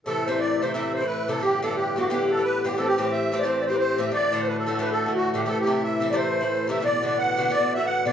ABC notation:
X:1
M:4/4
L:1/16
Q:"Swing" 1/4=177
K:Ador
V:1 name="Accordion"
A2 c2 d2 c2 e2 c2 B2 A2 | G2 A2 G2 F2 G2 A2 B2 G G | A G3 e3 d c3/2 d/2 c3/2 B/2 c2 e2 | d3 c B A3 B A3 F2 G G |
A G3 e3 d c6 e2 | d2 d2 f4 d2 e2 f2 d2 |]
V:2 name="Bouzouki"
[C,E,A,E]2 [C,E,A,E]4 [C,E,A,E]2 [C,E,A,E]3 [E,A,E]3 [C,E,A,E]2 | [G,,D,B,G]2 [G,,D,B,G]4 [G,,D,B,G]2 [G,,D,B,G]3 [D,B,G]3 [G,,D,B,G]2 | [A,,E,CG]2 [A,,E,CG]4 [A,,E,CG]2 [A,,E,CG]3 [E,CG]3 [A,,E,CG]2 | [A,,D,A,F]2 [A,,D,A,F]4 [A,,D,A,F]2 [A,,D,A,F]3 [D,A,F]3 [A,,D,A,F]2 |
[C,E,A,E]2 [C,E,A,E]4 [C,E,A,E]2 [C,E,A,E]3 [E,A,E]3 [C,E,A,E]2 | [B,,D,B,F]2 [B,,D,B,F]4 [B,,D,B,F]2 [B,,D,B,F]3 [D,B,F]3 [B,,D,B,F]2 |]
V:3 name="Harmonium" clef=bass
[A,,E,]16- | [A,,E,]16- | [A,,E,]16- | [A,,E,]16 |
[A,,E,]16- | [A,,E,]16 |]